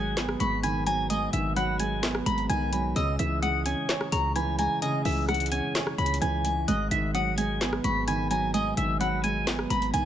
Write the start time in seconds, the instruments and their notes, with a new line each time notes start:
Already playing: 808-style bass G#1, grand piano G#2 D#3 F#3 G#3, clean electric guitar G#5, synth bell D#6
0.17 grand piano B3, snare, clap, closed hi-hat
0.29 cross-stick
0.40 808-style bass G#1, grand piano G#2, clean electric guitar B5, synth bell C#6, closed hi-hat
0.63 grand piano D#3, clean electric guitar G#5, synth bell B5, closed hi-hat
0.87 grand piano F#3, clean electric guitar G#5, synth bell A#5, closed hi-hat
1.10 grand piano G#2, clean electric guitar D#5, synth bell G#5, closed hi-hat
1.33 808-style bass G#1, grand piano D#3, clean electric guitar E5, closed hi-hat
1.56 grand piano F#3, clean electric guitar F#5, synth bell B5, closed hi-hat
1.80 grand piano G#3, clean electric guitar G#5, closed hi-hat
2.03 grand piano B3, snare, clap, closed hi-hat
2.15 cross-stick
2.26 808-style bass G#1, grand piano G#2, synth bell A#5, clean electric guitar B5, closed hi-hat
2.38 closed hi-hat
2.49 808-style bass B1, grand piano D#3, synth bell G#5, clean electric guitar G#5, closed hi-hat
2.73 grand piano F#3, synth bell B5, closed hi-hat
2.96 808-style bass C#2, grand piano C#3, clean electric guitar D#5, synth bell E6, closed hi-hat
3.19 808-style bass C#2, grand piano E3, clean electric guitar E5, closed hi-hat
3.42 grand piano G#3, clean electric guitar F#5, synth bell D#6, closed hi-hat
3.66 grand piano C#4, clean electric guitar G#5, closed hi-hat
3.89 grand piano C#5, snare, clap, closed hi-hat
4.01 cross-stick
4.12 808-style bass C#2, grand piano C#3, clean electric guitar A#5, synth bell C#6, closed hi-hat
4.36 grand piano E3, clean electric guitar G#5, synth bell B5, closed hi-hat
4.59 grand piano G#3, clean electric guitar G#5, synth bell A#5, closed hi-hat
4.82 grand piano C#3, clean electric guitar D#5, synth bell G#5, closed hi-hat
5.05 808-style bass C#2, grand piano E3, clean electric guitar E5, open hi-hat
5.28 grand piano G#3, synth bell F#5, clean electric guitar F#5, cross-stick, closed hi-hat
5.34 closed hi-hat
5.40 closed hi-hat
5.46 closed hi-hat
5.52 grand piano C#4, clean electric guitar G#5, closed hi-hat
5.75 grand piano C#5, snare, clap, closed hi-hat
5.87 cross-stick
5.98 808-style bass C#2, grand piano C#3, clean electric guitar B5, closed hi-hat
6.06 closed hi-hat
6.14 closed hi-hat
6.22 808-style bass C#2, grand piano E3, clean electric guitar G#5, closed hi-hat
6.45 grand piano G#3, synth bell G#5, closed hi-hat
6.68 808-style bass G#1, grand piano G#2, clean electric guitar D#5, synth bell F#6, closed hi-hat
6.91 808-style bass G#1, grand piano D#3, clean electric guitar E5, closed hi-hat
7.14 grand piano F#3, clean electric guitar F#5, synth bell D#6, closed hi-hat
7.38 grand piano G#3, clean electric guitar G#5, closed hi-hat
7.61 grand piano B3, snare, clap, closed hi-hat
7.73 cross-stick
7.84 808-style bass G#1, grand piano G#2, clean electric guitar B5, synth bell C#6, closed hi-hat
8.07 grand piano D#3, clean electric guitar G#5, synth bell B5, closed hi-hat
8.31 grand piano F#3, clean electric guitar G#5, synth bell A#5, closed hi-hat
8.54 grand piano G#2, clean electric guitar D#5, synth bell G#5, closed hi-hat
8.77 808-style bass G#1, grand piano D#3, clean electric guitar E5, closed hi-hat
9.01 grand piano F#3, clean electric guitar F#5, synth bell B5, closed hi-hat
9.24 grand piano G#3, clean electric guitar G#5, closed hi-hat
9.47 grand piano B3, snare, clap, closed hi-hat
9.59 cross-stick
9.70 808-style bass G#1, grand piano G#2, synth bell A#5, clean electric guitar B5, closed hi-hat
9.82 closed hi-hat
9.94 808-style bass B1, grand piano D#3, clean electric guitar G#5, synth bell G#5, closed hi-hat